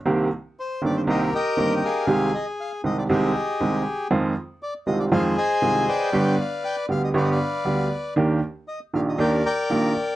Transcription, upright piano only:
X:1
M:4/4
L:1/8
Q:1/4=118
K:Cm
V:1 name="Upright piano" clef=bass
[C,,C,E,B,CG] z2 [G,,,G,,E,B,CG] [C,,C,E,B,CG] z [G,,,G,,E,B,CG] z | [C,,C,E,A,CG] z2 [C,,C,E,A,CG] [C,,C,E,A,CG] z [C,,C,E,A,CG] z | [F,,E,F,A,CF] z2 [C,,C,E,A,CF] [F,,E,F,A,CF] z [C,,C,E,A,CF] z | [G,,,G,,D,G,=B,G] z2 [D,,D,G,B,G] [G,,,G,,D,G,B,G] z [D,,D,G,B,G] z |
[E,,E,B,DG] z2 [B,,,B,,E,B,DG] [E,,E,B,DG] z [B,,,B,,E,B,DG] z |]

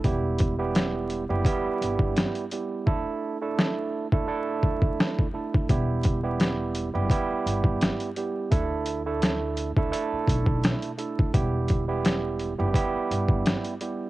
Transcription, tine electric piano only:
X:1
M:4/4
L:1/16
Q:"Swing 16ths" 1/4=85
K:Edor
V:1 name="Tine electric piano"
[G,B,EG]3 [G,B,EG]4 [G,B,EG] [G,B,EG]6 [G,B,EG]2 | [A,DEA]3 [A,DEA]4 [A,DEA] [A,DEA]6 [A,DEA]2 | [G,B,EG]3 [G,B,EG]4 [G,B,EG] [G,B,EG]6 [G,B,EG]2 | [A,DEA]3 [A,DEA]4 [A,DEA] [A,DEA]6 [A,DEA]2 |
[G,B,EG]3 [G,B,EG]4 [G,B,EG] [G,B,EG]6 [G,B,EG]2 |]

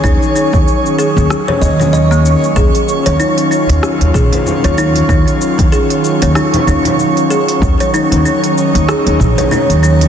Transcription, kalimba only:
X:1
M:4/4
L:1/16
Q:"Swing 16ths" 1/4=95
K:Ebm
V:1 name="Kalimba"
E2 E4 A3 d e d e B, z2 | A3 d E2 E4 A3 d E2 | E4 A3 d E2 E4 A2- | A d E2 E4 A3 d E2 E2 |]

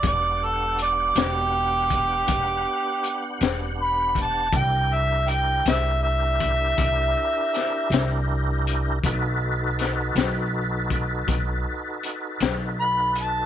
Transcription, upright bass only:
X:1
M:12/8
L:1/8
Q:3/8=53
K:Em
V:1 name="Upright bass" clef=bass
E,,,3 E,,,3 E,,, z2 E,,,3 | C,,3 C,,3 C,, z2 C,,3 | B,,,3 B,,,3 B,,, z2 B,,,3 |]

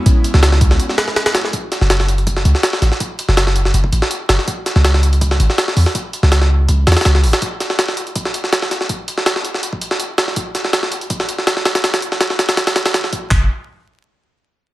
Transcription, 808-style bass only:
X:1
M:4/4
L:1/16
Q:1/4=163
K:C#m
V:1 name="808-style bass" clef=bass
z3 C,,4- C,, z8 | z3 F,,,6- F,,, C,, z3 A,,, z | z3 F,,,4- F,,, F,,,2 A,,, z3 F,,, z | z3 C,,6- C,, G,,, z3 E,, z |
z3 C,,4- C,, C,,2 E,, z C,,2 G,,, z | z16 | z16 | z16 |
z16 | F,,,2 z12 z2 |]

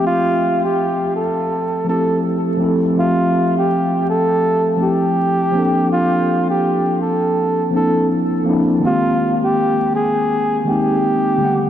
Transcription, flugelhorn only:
X:1
M:4/4
L:1/16
Q:"Swing 16ths" 1/4=82
K:F
V:1 name="Flugelhorn"
F3 G3 A4 A2 z4 | F3 G3 A4 G6 | F3 G3 A4 A2 z4 | F3 G3 _A4 G6 |]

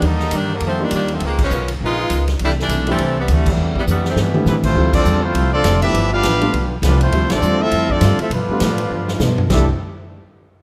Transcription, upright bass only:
X:1
M:4/4
L:1/8
Q:"Swing" 1/4=203
K:C
V:1 name="Upright bass" clef=bass
_E,,2 G,,2 F,,2 E,,2 | _D,,2 _C,,2 _B,,,2 D,,2 | C,,2 B,,,2 C,,2 D,,2 | E,,2 F,,2 G,,2 A,,2 |
D,,2 E,,2 C,,2 F,,,2 | G,,,2 A,,,2 B,,,2 C,,2 | (3D,, C,, A,,, E,,2 F,,2 G,, z | B,, z A,,2 G,,2 B,,2 |
C,, z6 z |]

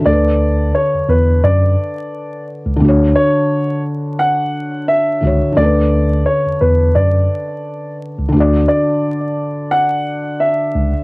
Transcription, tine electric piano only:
X:1
M:4/4
L:1/16
Q:"Swing 16ths" 1/4=87
K:D
V:1 name="Tine electric piano" clef=bass
D,,4 z E,, E,,2 F,,2 z4 z C,, | D,,2 z12 C,, z | D,,4 z E,, E,,2 F,,2 z4 z C,, | D,,2 z12 C,, z |]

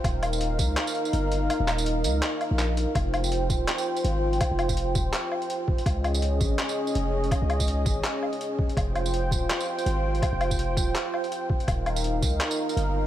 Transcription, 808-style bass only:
X:1
M:4/4
L:1/16
Q:"Swing 16ths" 1/4=165
K:Fm
V:1 name="808-style bass" clef=bass
E,,,6 D,,2 z4 G,,,4 | z E,,,4- E,,, D,,2 z3 B,,,4 z | F,,,6 E,,,2 z4 A,,,4 | z F,,,4- F,,, E,,,2 z8 |
D,,6 A,,,2 z4 F,,,4 | z D,,4- D,, A,,,2 z8 | F,,,6 E,,,2 z4 A,,,4 | z F,,,4- F,,, E,,,2 z8 |
E,,,6 D,,2 z4 G,,,4 |]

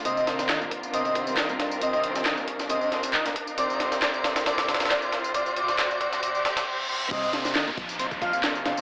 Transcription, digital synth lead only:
X:1
M:4/4
L:1/16
Q:"Swing 16ths" 1/4=136
K:Cm
V:1 name="Digital synth lead"
e e z6 e e z6 | e e z6 e e z6 | d d z2 d d z2 d d z2 d d z2 | d d d d d d d d d d d d z4 |
e e z8 f z4 z |]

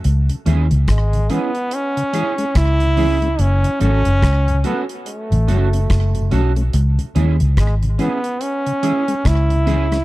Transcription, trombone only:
X:1
M:4/4
L:1/8
Q:"Swing 16ths" 1/4=72
K:C#m
V:1 name="Trombone"
z2 G, B, C2 E2 | C C2 B, A,3 z | z2 G, B, C2 E2 |]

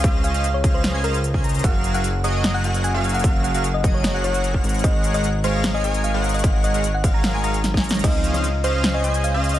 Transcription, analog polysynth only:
X:1
M:4/4
L:1/16
Q:1/4=150
K:Db
V:1 name="Analog polysynth"
[DAcef]3 [DAcef] z2 [DAcef]3 [DAcea] [DAcef] z2 [DAcea] [DAceb]2 | [G,GABf]3 [G,GABf] z2 [G,GABe]3 [G,GABg] [G,GABg]3 [G,GABf]3 | [G,GABf]3 [G,GABf] z2 [G,GABe]3 [G,GABg] [G,GABg]3 [A,ABdg]3 | [A,ABdg]3 [A,ABdg] z2 [A,ABdf]3 [A,ABda] [A,ABda]3 [A,ABdg]3 |
[A,ABdg]3 [A,ABdg] z2 [A,ABdf]3 [A,ABda] [A,ABdf] z2 [A,ABda] [A,ABdb]2 | [DAcef]3 [DAcef] z2 [DAcef]3 [DAcea] [DAcea]3 [DAcef]3 |]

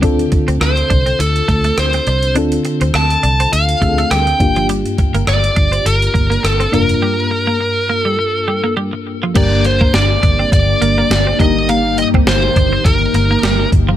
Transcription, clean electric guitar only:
X:1
M:4/4
L:1/16
Q:"Swing 16ths" 1/4=103
K:Gm
V:1 name="Clean electric guitar"
D z2 C z2 D C z2 A, A, z C D z | D z2 C z2 D C z2 A, A, G, z2 F, | G, z2 B, z2 D C z2 B, B, z C D z | G, z2 B, z2 B, G, z2 G, B, G, z2 F, |
G, z2 B, z2 D C z2 B, B, z C D z | B, z2 C z2 D C z2 B, B, G, z2 F, |]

